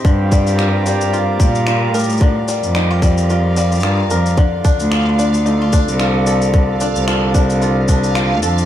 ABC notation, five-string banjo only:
X:1
M:4/4
L:1/16
Q:"Swing 16ths" 1/4=111
K:Gm
V:1 name="Five-string banjo"
D,2 G,2 F2 G,2 F2 G,2 F2 B2 | D,2 G,2 E F G,2 F2 G,2 F2 B2 | D,2 D2 F2 D2 E F D2 F2 A2 | D,2 D2 F2 D2 F2 D2 F2 A2 |]